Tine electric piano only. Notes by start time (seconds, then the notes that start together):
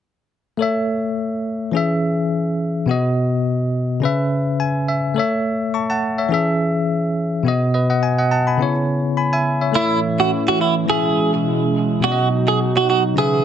0.57 A3 A4 C#5
0.62 E5
1.72 E3 C#4 G#4
1.77 E5
2.86 B2 B3 F#4
2.91 D#5
4.00 C#3 C#4 B4
4.05 E5
4.60 G#5
4.88 E5
5.14 A3 A4 C#5
5.19 E5
5.74 A5 C#6
5.90 F#5 A5
6.18 C#5 E5
6.29 E3 C#4 G#4
6.34 E5
7.43 B2 B3 F#4
7.48 D#5
7.74 B4 D#5
7.90 D#5 F#5
8.03 G#5
8.18 D#5 F#5
8.31 F#5 A5
8.47 G#5 B5
8.57 C#3 B3 E4
8.62 C#5
9.17 G#5 B5
9.33 E5 G#5
9.61 C#5 E5
9.72 A3 A4 C#5
9.77 E5
10.86 E3 C#4 G#4
10.91 E5
12.00 B2 B3 F#4
12.05 D5
12.12 D#5
13.14 C#3 C#4 B4
13.19 E5